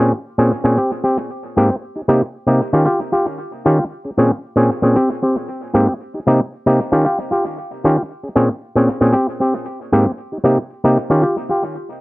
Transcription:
0.00 0.12 A#2 medium
0.00 0.12 C4 medium
0.00 0.13 C#4 medium
0.00 0.12 G#4 medium
0.38 0.52 A#2 medium
0.38 0.52 C4 medium
0.38 0.52 C#4 medium
0.38 0.52 G#4 medium
0.64 0.78 A#2 medium
0.64 0.76 C4 medium
0.64 0.78 C#4 medium
0.64 0.78 G#4 medium
0.77 0.91 C4 medium
0.77 0.91 G4 medium
1.04 1.17 C4 medium
1.04 1.17 G4 medium
1.57 1.70 G#2 medium
1.57 1.70 A#3 medium
1.57 1.70 C4 medium
1.57 1.69 G4 medium
1.71 1.76 C4 soft
1.71 1.75 G4 soft
1.96 2.01 D#4 soft
1.96 2.01 G4 soft
2.08 2.22 C3 medium
2.08 2.22 A#3 medium
2.08 2.22 D#4 medium
2.08 2.22 G4 medium
2.47 2.60 C3 medium
2.47 2.61 A#3 medium
2.47 2.61 D#4 medium
2.47 2.61 G4 medium
2.73 2.87 D#3 medium
2.73 2.87 C#4 medium
2.73 2.84 F4 medium
2.73 2.85 G4 medium
2.86 2.99 F4 medium
2.86 3.00 G4 medium
3.12 3.26 F4 medium
3.12 3.26 G4 medium
3.66 3.79 D#3 medium
3.66 3.79 C#4 medium
3.66 3.78 F4 medium
3.66 3.78 G4 medium
3.79 3.84 F4 soft
3.79 3.84 G4 soft
4.05 4.10 C#4 soft
4.05 4.10 G#4 soft
4.18 4.31 A#2 medium
4.18 4.31 C4 medium
4.18 4.31 C#4 medium
4.18 4.31 G#4 medium
4.56 4.70 A#2 medium
4.56 4.70 C4 medium
4.56 4.70 C#4 medium
4.56 4.70 G#4 medium
4.82 4.96 A#2 medium
4.82 4.95 C4 medium
4.82 4.96 C#4 medium
4.82 4.96 G#4 medium
4.96 5.09 C4 medium
4.96 5.09 G4 medium
5.23 5.36 C4 medium
5.23 5.36 G4 medium
5.74 5.87 G#2 medium
5.74 5.87 A#3 medium
5.74 5.87 C4 medium
5.74 5.87 G4 medium
5.88 5.93 C4 soft
5.88 5.93 G4 soft
6.14 6.19 D#4 soft
6.14 6.20 G4 soft
6.27 6.40 C3 medium
6.27 6.40 A#3 medium
6.27 6.40 D#4 medium
6.27 6.40 G4 medium
6.66 6.79 C3 medium
6.66 6.79 A#3 medium
6.66 6.79 D#4 medium
6.66 6.80 G4 medium
6.92 7.05 D#3 medium
6.92 7.05 C#4 medium
6.92 7.04 F4 medium
6.92 7.05 G4 medium
7.05 7.18 F4 medium
7.05 7.19 G4 medium
7.31 7.44 F4 medium
7.31 7.45 G4 medium
7.84 7.97 D#3 medium
7.84 7.97 C#4 medium
7.84 7.96 F4 medium
7.84 7.96 G4 medium
7.97 8.02 F4 soft
7.97 8.02 G4 medium
8.23 8.28 C#4 soft
8.23 8.29 G#4 medium
8.36 8.49 A#2 medium
8.36 8.49 C4 medium
8.36 8.49 C#4 medium
8.36 8.49 G#4 medium
8.76 8.88 A#2 medium
8.76 8.89 C4 medium
8.76 8.89 C#4 medium
8.76 8.89 G#4 medium
9.01 9.14 A#2 medium
9.01 9.11 C4 medium
9.01 9.14 C#4 medium
9.01 9.14 G#4 medium
9.13 9.27 C4 medium
9.13 9.27 G4 medium
9.40 9.53 C4 medium
9.40 9.54 G4 medium
9.92 10.06 G#2 medium
9.92 10.06 A#3 medium
9.92 10.05 C4 medium
9.92 10.05 G4 medium
10.06 10.11 C4 soft
10.06 10.11 G4 medium
10.32 10.38 D#4 soft
10.32 10.37 G4 medium
10.44 10.58 C3 medium
10.44 10.58 A#3 medium
10.44 10.58 D#4 medium
10.44 10.58 G4 medium
10.84 10.97 C3 medium
10.84 10.97 A#3 medium
10.84 10.98 D#4 medium
10.84 10.98 G4 medium
11.10 11.23 D#3 medium
11.10 11.23 C#4 medium
11.10 11.21 F4 medium
11.10 11.22 G4 medium
11.22 11.36 F4 medium
11.22 11.37 G4 medium
11.49 11.63 F4 medium
11.49 11.63 G4 medium

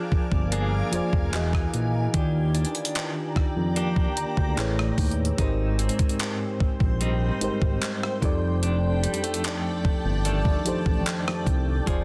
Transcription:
0.00 0.24 F3 medium
0.00 1.33 F3 medium
0.00 0.51 D4 medium
0.00 0.24 F4 medium
0.00 0.24 G#4 medium
0.00 0.52 G#4 medium
0.00 1.31 A#4 medium
0.00 0.25 C5 medium
0.00 0.25 D5 medium
0.00 1.31 F5 medium
0.00 2.11 G#5 medium
0.00 1.31 D6 medium
0.12 0.20 G1 soft
0.12 kick loud
0.32 0.82 G1 medium
0.32 kick loud
0.52 1.41 A#3 medium
0.52 1.41 D4 medium
0.52 1.42 G#4 medium
0.52 closed hi-hat medium
0.91 1.01 F1 soft
0.91 1.32 F3 medium
0.91 1.33 F4 medium
0.91 1.33 G#4 medium
0.91 1.34 C5 medium
0.91 1.34 D5 medium
0.91 closed hi-hat medium
1.13 1.30 F1 medium
1.13 kick loud
1.32 1.67 E1 medium
1.32 2.00 E3 medium
1.32 2.22 E3 medium
1.32 2.00 E4 medium
1.32 2.01 F#4 medium
1.32 2.01 G#4 medium
1.32 2.02 D#5 medium
1.32 clap loud
1.32 closed hi-hat medium
1.53 kick medium
1.53 cross-stick loud
1.74 2.08 A#1 medium
1.74 closed hi-hat medium
2.13 2.65 D#2 loud
2.13 3.48 D#3 medium
2.13 4.65 D#3 medium
2.13 3.48 D#4 medium
2.13 3.49 F4 medium
2.13 3.76 G4 medium
2.13 3.49 G4 medium
2.13 4.55 D5 medium
2.13 3.50 D5 medium
2.13 4.55 G5 medium
2.13 4.55 A#5 medium
2.13 kick loud
2.13 closed hi-hat medium
2.55 3.76 D4 medium
2.55 closed hi-hat soft
2.65 closed hi-hat medium
2.75 closed hi-hat medium
2.85 closed hi-hat medium
2.95 clap loud
2.95 closed hi-hat medium
3.36 3.44 F2 soft
3.36 kick loud
3.36 cross-stick medium
3.56 4.07 F2 loud
3.76 4.65 A#3 medium
3.76 4.66 D4 medium
3.76 4.66 G4 medium
3.76 closed hi-hat medium
3.96 4.16 G5 medium
3.96 kick medium
4.17 4.25 D2 soft
4.17 4.37 A#5 medium
4.17 closed hi-hat medium
4.37 4.54 D2 loud
4.37 4.76 G5 medium
4.37 kick medium
4.56 4.91 A1 loud
4.56 5.38 A2 medium
4.56 5.24 A3 medium
4.56 5.25 E4 medium
4.56 5.25 G#4 medium
4.56 5.26 B4 medium
4.56 5.26 C#5 medium
4.56 clap loud
4.56 closed hi-hat medium
4.79 cross-stick loud
4.98 5.32 D#2 medium
4.98 kick loud
4.98 closed hi-hat soft
4.98 open hi-hat medium
5.11 closed hi-hat medium
5.25 closed hi-hat medium
5.38 5.89 G#1 loud
5.38 8.22 G#2 medium
5.38 6.72 G#3 medium
5.38 6.73 D#4 medium
5.38 7.01 D#4 medium
5.38 6.73 G4 medium
5.38 6.74 A#4 medium
5.38 8.19 C5 medium
5.38 6.74 C5 medium
5.38 11.83 G5 medium
5.38 kick loud
5.38 closed hi-hat medium
5.79 7.01 C4 medium
5.79 closed hi-hat medium
5.89 closed hi-hat medium
5.99 kick loud
5.99 closed hi-hat medium
6.09 closed hi-hat medium
6.19 clap loud
6.19 closed hi-hat medium
6.60 6.69 A#1 soft
6.60 kick loud
6.80 7.31 A#1 medium
6.80 kick loud
7.01 8.66 G3 medium
7.01 8.66 C4 medium
7.01 8.63 D#4 medium
7.01 closed hi-hat medium
7.40 7.49 G#1 soft
7.40 8.22 G#3 medium
7.40 8.21 D#4 medium
7.40 8.22 G4 medium
7.40 8.23 A#4 medium
7.40 8.24 C5 medium
7.40 closed hi-hat medium
7.62 7.79 G#1 loud
7.62 kick medium
7.82 clap loud
7.82 closed hi-hat medium
8.03 cross-stick loud
8.21 9.07 F1 loud
8.21 8.62 F2 medium
8.21 9.56 F3 medium
8.21 9.57 D#4 medium
8.21 9.57 G4 medium
8.21 9.57 A4 medium
8.21 11.83 D5 medium
8.21 9.58 D5 loud
8.21 11.83 A5 medium
8.21 kick loud
8.21 closed hi-hat medium
8.63 11.87 F2 medium
8.63 10.26 D4 medium
8.63 closed hi-hat medium
9.03 9.24 G3 medium
9.03 closed hi-hat medium
9.14 closed hi-hat medium
9.24 10.24 A3 medium
9.24 closed hi-hat medium
9.34 closed hi-hat medium
9.44 clap loud
9.44 closed hi-hat medium
9.85 9.93 G1 soft
9.85 kick loud
10.05 10.56 G1 loud
10.25 11.87 D#3 medium
10.25 11.96 A3 medium
10.25 12.04 D4 medium
10.25 closed hi-hat medium
10.45 kick medium
10.64 10.74 A1 soft
10.64 11.66 F3 medium
10.64 11.66 D#4 medium
10.64 11.67 G4 medium
10.64 11.67 A4 medium
10.64 11.68 C5 medium
10.64 closed hi-hat medium
10.86 11.03 A1 medium
10.86 kick medium
11.06 clap loud
11.06 closed hi-hat medium
11.28 cross-stick loud
11.47 11.80 C2 loud
11.47 kick loud
11.47 closed hi-hat medium
11.86 12.04 F1 loud
11.86 12.04 F3 medium
11.86 12.04 F4 medium
11.86 12.04 G#4 medium
11.86 12.04 C5 medium
11.86 12.04 D5 loud
11.86 kick loud
11.86 closed hi-hat medium

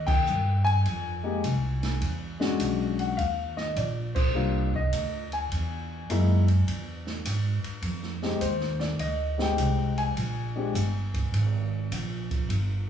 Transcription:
0.00 0.24 D#2 medium
0.07 0.61 G5 loud
0.07 kick medium
0.07 crash medium
0.26 0.83 G2 medium
0.26 hi-hat pedal medium
0.65 2.94 G#5 loud
0.65 ride soft
0.85 1.42 F2 medium
0.85 ride medium
1.23 1.41 G#3 medium
1.23 1.41 A#3 medium
1.23 1.41 D#4 medium
1.23 1.42 G4 medium
1.43 2.00 C2 medium
1.43 hi-hat pedal medium
1.43 ride medium
1.83 snare medium
1.83 ride soft
2.01 2.58 E2 medium
2.01 ride medium
2.40 3.14 G#3 medium
2.40 3.14 C#4 medium
2.40 3.14 D4 medium
2.40 3.14 F#4 medium
2.40 snare medium
2.60 3.16 B1 medium
2.60 hi-hat pedal medium
2.60 ride medium
2.99 3.19 F#5 medium
2.99 ride soft
3.17 3.75 D#2 medium
3.17 3.54 F5 medium
3.17 ride medium
3.57 3.77 D#5 medium
3.57 snare soft
3.76 4.32 A#1 medium
3.76 4.17 D5 medium
3.76 hi-hat pedal medium
3.76 ride medium
4.15 4.69 C5 medium
4.15 kick medium
4.15 crash medium
4.35 4.91 C2 medium
4.35 4.70 G3 medium
4.35 4.70 A#3 medium
4.35 4.70 D4 medium
4.35 4.70 F4 medium
4.74 5.29 D#5 medium
4.74 kick medium
4.92 5.49 D2 medium
4.92 hi-hat pedal medium
4.92 ride medium
5.32 7.03 G#5 medium
5.32 ride soft
5.52 6.08 E2 medium
5.52 ride medium
6.10 6.66 F#2 medium
6.10 6.45 G#3 medium
6.10 6.45 A#3 medium
6.10 6.45 D#4 medium
6.10 6.45 E4 medium
6.10 hi-hat pedal soft
6.10 ride medium
6.48 ride soft
6.67 7.24 E2 medium
6.67 ride medium
7.07 snare soft
7.25 7.61 G#2 medium
7.25 hi-hat pedal medium
7.25 ride medium
7.64 muted upright bass stroke soft
7.64 ride soft
7.82 8.39 F2 medium
7.82 ride medium
8.03 snare soft
8.23 8.40 G#3 medium
8.23 8.40 C4 medium
8.23 8.41 D#4 medium
8.23 8.41 G4 medium
8.23 snare soft
8.41 8.98 D#2 medium
8.41 8.78 C5 medium
8.41 hi-hat pedal soft
8.41 ride medium
8.60 snare soft
8.80 8.98 D5 medium
8.80 snare soft
8.99 9.57 D2 medium
8.99 9.37 D#5 medium
8.99 ride medium
9.38 10.12 G#3 medium
9.38 10.13 C4 medium
9.38 10.13 D#4 medium
9.38 10.13 G4 medium
9.38 snare medium
9.42 9.95 G5 medium
9.58 10.15 C2 medium
9.58 hi-hat pedal medium
9.58 ride medium
9.98 12.27 G#5 medium
9.98 ride soft
10.16 10.73 A#1 medium
10.16 ride medium
10.56 10.73 G#3 medium
10.56 10.73 C4 soft
10.56 10.74 D4 medium
10.56 10.74 G4 medium
10.74 11.31 G1 medium
10.74 hi-hat pedal soft
10.74 ride medium
11.14 kick medium
11.14 ride soft
11.32 11.89 G#1 medium
11.32 ride medium
11.91 12.48 A#1 medium
11.91 hi-hat pedal medium
11.91 ride medium
12.31 kick medium
12.31 ride soft
12.49 12.89 G1 medium
12.49 ride medium

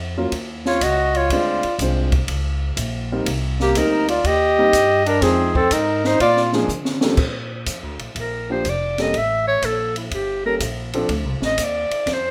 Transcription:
0.00 0.31 F2 medium
0.17 0.31 F#3 medium
0.17 0.31 A#3 medium
0.17 0.31 C#4 medium
0.17 0.32 F4 medium
0.17 0.32 A#4 medium
0.32 0.80 D#2 medium
0.32 kick soft
0.32 ride medium
0.65 0.85 F4 medium
0.65 0.84 C#5 medium
0.65 snare soft
0.81 1.29 C#2 medium
0.81 1.17 F#4 medium
0.81 1.18 D#5 medium
0.81 kick soft
0.81 hi-hat pedal soft
0.81 ride medium
1.15 1.31 F4 medium
1.15 1.34 C#5 medium
1.15 ride soft
1.30 1.61 D2 medium
1.30 1.61 G#3 medium
1.30 1.61 C4 soft
1.30 1.61 D4 medium
1.30 1.80 F4 medium
1.30 1.62 F4 soft
1.30 1.62 C5 medium
1.30 1.81 D5 medium
1.30 kick soft
1.30 ride medium
1.63 muted upright bass stroke soft
1.63 ride soft
1.79 2.27 C2 medium
1.79 2.10 G#3 medium
1.79 2.10 C4 soft
1.79 2.10 D4 soft
1.79 2.10 F4 soft
1.79 2.11 C5 medium
1.79 kick soft
1.79 hi-hat pedal soft
1.79 ride medium
2.12 kick medium
2.12 ride soft
2.27 2.76 C#2 medium
2.27 kick soft
2.27 ride medium
2.77 3.25 A#1 medium
2.77 kick soft
2.77 hi-hat pedal soft
2.77 ride medium
3.12 3.26 G3 medium
3.12 3.26 A#3 medium
3.12 3.26 C4 medium
3.12 3.26 D#4 medium
3.12 3.26 A#4 medium
3.26 3.74 C2 medium
3.26 kick soft
3.26 ride medium
3.60 3.79 A#3 medium
3.60 3.80 G4 medium
3.60 snare soft
3.75 4.23 D2 medium
3.75 4.06 G3 medium
3.75 4.06 A#3 medium
3.75 4.06 C4 medium
3.75 4.09 D#4 medium
3.75 4.06 D#4 medium
3.75 4.06 A#4 medium
3.75 4.10 A#4 medium
3.75 kick soft
3.75 hi-hat pedal soft
3.75 ride medium
4.08 4.28 F4 medium
4.08 4.28 D5 medium
4.08 ride soft
4.24 4.72 D#2 medium
4.24 5.05 G4 medium
4.24 5.08 D#5 loud
4.24 kick soft
4.24 ride medium
4.58 4.72 G3 medium
4.58 4.72 A#3 medium
4.58 4.72 C4 medium
4.58 4.72 D#4 medium
4.58 4.72 A#4 medium
4.73 5.21 G2 medium
4.73 kick soft
4.73 hi-hat pedal medium
4.73 ride medium
5.06 5.23 D4 medium
5.06 5.25 A#4 medium
5.06 ride soft
5.21 5.69 F2 medium
5.21 5.52 F3 medium
5.21 5.52 G#3 soft
5.21 5.54 C4 medium
5.21 5.52 C4 medium
5.21 5.53 D#4 medium
5.21 5.56 G#4 medium
5.21 5.53 G#4 medium
5.21 kick soft
5.21 snare soft
5.21 ride medium
5.54 5.74 C4 medium
5.54 5.75 A4 medium
5.54 kick soft
5.71 6.19 G#2 medium
5.71 6.05 D#4 medium
5.71 6.08 A#4 medium
5.71 kick soft
5.71 hi-hat pedal medium
5.71 ride medium
6.04 6.20 D#4 medium
6.04 6.21 C5 medium
6.04 snare soft
6.20 6.68 A#2 medium
6.20 6.52 F4 medium
6.20 6.42 D5 medium
6.20 kick soft
6.20 ride medium
6.37 snare soft
6.53 6.68 F3 medium
6.53 6.68 G#3 medium
6.53 6.68 A#3 medium
6.53 6.68 D4 medium
6.53 6.68 G#4 medium
6.53 snare soft
6.68 7.16 D3 medium
6.68 hi-hat pedal soft
6.85 snare medium
7.01 7.17 F3 medium
7.01 7.17 G3 medium
7.01 7.17 A#3 medium
7.01 7.17 D4 medium
7.01 7.17 A4 medium
7.01 snare medium
7.17 7.65 A#2 medium
7.17 kick medium
7.17 crash medium
7.66 7.83 F2 medium
7.66 kick soft
7.66 hi-hat pedal medium
7.66 ride medium
7.83 7.98 D2 soft
7.99 8.14 A#1 medium
7.99 ride soft
8.15 8.63 A#1 medium
8.15 kick soft
8.15 ride medium
8.20 8.49 A#4 medium
8.50 8.64 F3 medium
8.50 8.64 A#3 soft
8.50 8.64 D4 soft
8.50 8.64 G4 medium
8.50 8.71 C5 medium
8.64 9.12 F1 medium
8.64 kick soft
8.64 hi-hat pedal soft
8.64 ride soft
8.69 9.03 D5 medium
8.98 9.13 G3 medium
8.98 9.13 A#3 medium
8.98 9.13 C#4 soft
8.98 9.13 A4 medium
8.98 9.19 D#5 medium
8.98 snare soft
8.98 ride soft
9.13 9.61 A1 medium
9.13 kick soft
9.13 ride soft
9.17 9.47 E5 medium
9.48 9.67 C#5 medium
9.62 10.10 A#1 medium
9.62 9.97 A4 medium
9.62 kick soft
9.62 hi-hat pedal soft
9.62 ride medium
9.96 10.13 E4 soft
9.96 ride soft
10.11 10.59 G1 medium
10.11 10.46 G4 medium
10.11 kick soft
10.11 ride soft
10.46 10.60 G3 medium
10.46 10.60 A#3 soft
10.46 10.60 C#4 soft
10.46 10.60 A4 medium
10.46 10.55 A#4 medium
10.60 11.08 A#1 medium
10.60 kick soft
10.60 hi-hat pedal medium
10.60 ride medium
10.93 11.08 F3 medium
10.93 11.09 C4 medium
10.93 11.09 D4 medium
10.93 11.09 A4 medium
10.93 ride soft
11.09 11.24 D2 medium
11.09 kick soft
11.09 ride medium
11.24 11.40 C2 medium
11.40 11.57 A1 medium
11.40 snare soft
11.45 11.65 D#5 medium
11.58 11.89 D#2 medium
11.58 kick soft
11.58 hi-hat pedal medium
11.58 ride medium
11.63 12.15 D5 medium
11.90 muted upright bass stroke soft
11.90 ride soft
12.06 12.31 F2 medium
12.06 kick soft
12.06 snare soft
12.06 ride medium
12.13 12.31 C5 medium

